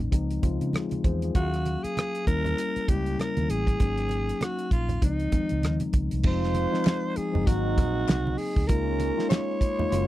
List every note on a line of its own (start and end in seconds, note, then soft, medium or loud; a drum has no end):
0.00 0.14 F#3 medium
0.00 0.14 A#3 medium
0.00 0.14 C#4 medium
0.00 0.12 D#4 medium
0.11 0.38 C#2 medium
0.11 0.41 F3 medium
0.11 0.41 G#3 medium
0.11 0.41 C4 medium
0.11 0.42 D#4 medium
0.11 kick medium
0.11 closed hi-hat medium
0.11 muted conga soft
0.30 closed hi-hat soft
0.42 0.58 C#2 medium
0.42 1.30 F3 medium
0.42 1.30 G#3 medium
0.42 1.30 C4 medium
0.42 0.74 F4 medium
0.42 kick medium
0.42 closed hi-hat medium
0.42 muted conga soft
0.42 low conga medium
0.61 0.72 C#3 medium
0.61 closed hi-hat soft
0.73 1.04 F4 soft
0.73 1.03 G#4 medium
0.73 cross-stick medium
0.73 closed hi-hat medium
0.73 high conga medium
0.91 closed hi-hat medium
0.91 high conga medium
1.04 1.30 E2 medium
1.04 1.22 G#4 medium
1.04 1.21 C5 medium
1.04 kick medium
1.04 closed hi-hat medium
1.22 1.52 F4 medium
1.22 1.52 G#4 medium
1.22 closed hi-hat soft
1.35 1.75 D#2 medium
1.35 2.27 F#3 medium
1.35 2.26 A#3 medium
1.35 2.26 C#4 medium
1.35 1.85 F#4 medium
1.35 2.28 F5 medium
1.35 kick loud
1.35 closed hi-hat medium
1.35 muted conga soft
1.54 cross-stick soft
1.54 closed hi-hat soft
1.66 closed hi-hat medium
1.66 muted conga soft
1.83 2.27 G#4 medium
1.83 muted fingered electric bass stroke soft
1.83 closed hi-hat medium
1.97 cross-stick loud
1.97 closed hi-hat medium
1.97 high conga medium
2.15 closed hi-hat soft
2.27 2.53 D#2 medium
2.27 2.85 G3 medium
2.27 2.85 A#3 medium
2.27 2.86 C#4 medium
2.27 2.86 E4 medium
2.27 2.91 A#4 loud
2.27 kick medium
2.27 closed hi-hat medium
2.45 closed hi-hat soft
2.45 low conga medium
2.58 closed hi-hat medium
2.76 muted fingered electric bass stroke soft
2.76 closed hi-hat soft
2.88 3.14 C#2 medium
2.88 3.76 G3 medium
2.88 3.76 A#3 medium
2.88 3.76 C#4 medium
2.88 3.77 E4 medium
2.88 3.21 G4 medium
2.88 kick medium
2.88 closed hi-hat medium
2.88 muted conga soft
2.88 low conga medium
3.06 closed hi-hat soft
3.19 3.52 A#4 medium
3.19 cross-stick medium
3.19 closed hi-hat medium
3.19 high conga medium
3.37 3.48 D#2 medium
3.37 closed hi-hat soft
3.37 high conga medium
3.49 3.75 A1 medium
3.49 4.44 G#4 medium
3.49 closed hi-hat medium
3.67 kick medium
3.67 closed hi-hat soft
3.80 4.31 G#1 medium
3.80 4.97 F#3 medium
3.80 4.97 A#3 medium
3.80 4.97 C#4 medium
3.80 4.97 D#4 medium
3.80 kick loud
3.80 closed hi-hat medium
3.80 muted conga soft
3.98 cross-stick soft
3.98 closed hi-hat soft
4.09 closed hi-hat medium
4.09 muted conga soft
4.29 cross-stick soft
4.29 closed hi-hat soft
4.41 4.72 F#4 medium
4.41 cross-stick medium
4.41 closed hi-hat medium
4.41 high conga medium
4.59 closed hi-hat soft
4.71 4.97 A#1 medium
4.71 5.00 F4 medium
4.71 kick medium
4.71 closed hi-hat medium
4.89 closed hi-hat soft
4.89 low conga medium
5.01 5.28 C#2 medium
5.01 5.31 F3 medium
5.01 5.31 G#3 medium
5.01 5.31 C4 medium
5.01 5.32 D#4 medium
5.01 5.91 D#4 medium
5.01 kick medium
5.01 closed hi-hat medium
5.01 muted conga soft
5.20 closed hi-hat soft
5.32 5.41 D#3 medium
5.32 6.21 G#3 medium
5.32 6.21 C4 medium
5.32 6.21 D#4 medium
5.32 muted fingered electric bass stroke soft
5.32 kick medium
5.32 closed hi-hat medium
5.32 muted conga soft
5.32 low conga medium
5.39 6.22 F3 medium
5.49 5.65 C#2 medium
5.49 closed hi-hat soft
5.63 5.79 D#2 medium
5.63 cross-stick medium
5.63 closed hi-hat medium
5.63 high conga medium
5.80 closed hi-hat medium
5.80 high conga medium
5.93 6.09 C#2 medium
5.93 kick medium
5.93 closed hi-hat medium
6.11 6.23 C2 medium
6.11 closed hi-hat soft
6.23 6.65 F1 medium
6.23 6.69 F3 medium
6.23 6.69 G#3 medium
6.23 7.14 G#3 medium
6.23 6.70 C4 medium
6.23 7.14 C4 medium
6.23 6.70 D#4 medium
6.23 7.14 F4 medium
6.23 7.18 C5 medium
6.23 kick loud
6.23 crash medium
6.23 muted conga soft
6.44 snare soft
6.54 closed hi-hat medium
6.54 muted conga soft
6.72 7.30 F3 medium
6.72 7.30 G#3 medium
6.72 7.30 C4 medium
6.72 7.30 D#4 medium
6.72 snare soft
6.85 snare loud
6.85 clap medium
6.85 closed hi-hat medium
6.85 high conga medium
7.16 7.48 G#4 loud
7.16 muted fingered electric bass stroke soft
7.16 closed hi-hat medium
7.32 7.45 F#1 medium
7.32 7.46 F3 medium
7.32 7.47 G#3 medium
7.32 7.46 C4 medium
7.32 7.46 D#4 medium
7.32 low conga medium
7.46 7.78 G#1 loud
7.46 8.63 F#3 medium
7.46 8.36 G#3 medium
7.46 8.63 A#3 medium
7.46 8.36 C4 medium
7.46 8.64 C4 medium
7.46 8.36 D#4 medium
7.46 8.64 D#4 medium
7.46 8.39 F#4 medium
7.46 kick loud
7.46 closed hi-hat medium
7.46 muted conga soft
7.78 8.03 A#1 loud
7.78 kick medium
7.78 closed hi-hat medium
7.78 muted conga soft
7.78 low conga medium
8.08 8.34 C2 loud
8.08 snare loud
8.08 clap medium
8.08 closed hi-hat medium
8.08 high conga medium
8.27 high conga medium
8.38 8.69 G#4 medium
8.38 open hi-hat medium
8.56 8.70 D2 medium
8.56 kick medium
8.67 9.10 C#2 loud
8.67 9.14 G#3 medium
8.67 9.59 G#3 medium
8.67 9.59 A#3 medium
8.67 9.15 A#3 medium
8.67 9.59 C#4 medium
8.67 9.15 D#4 medium
8.67 9.15 F4 medium
8.67 9.29 A#4 loud
8.67 kick loud
8.67 closed hi-hat loud
8.67 muted conga soft
9.00 closed hi-hat medium
9.00 muted conga soft
9.17 9.74 G#3 medium
9.17 9.74 A#3 medium
9.17 9.75 D#4 medium
9.17 9.75 F4 medium
9.17 snare soft
9.29 10.07 C#5 loud
9.29 snare loud
9.29 clap medium
9.29 closed hi-hat medium
9.29 high conga medium
9.61 kick medium
9.61 closed hi-hat medium
9.78 9.89 G#3 medium
9.78 9.90 A#3 medium
9.78 9.91 D#4 medium
9.78 9.91 F4 medium
9.78 low conga medium
9.91 10.07 F#1 loud
9.91 10.07 G#3 medium
9.91 10.07 A#3 medium
9.91 10.07 C#4 medium
9.91 10.07 F4 medium
9.91 10.07 F#4 medium
9.91 closed hi-hat medium